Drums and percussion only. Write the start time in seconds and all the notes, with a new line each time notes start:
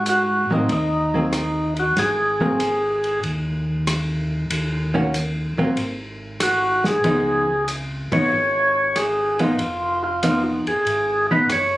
0.06 hi-hat pedal, ride
0.69 ride
1.33 cross-stick, hi-hat pedal, ride
1.77 ride
1.97 snare, ride
2.40 kick
2.60 hi-hat pedal, ride
3.04 ride
3.23 ride
3.87 cross-stick, hi-hat pedal, ride
4.50 ride
5.14 hi-hat pedal, ride
5.77 ride
6.40 cross-stick, hi-hat pedal, ride
6.84 snare
7.04 ride
7.68 hi-hat pedal, ride
8.12 kick, ride
8.96 cross-stick, hi-hat pedal, ride
9.39 ride
9.59 ride
10.23 hi-hat pedal, ride
10.67 ride
10.87 ride
11.50 cross-stick, hi-hat pedal, ride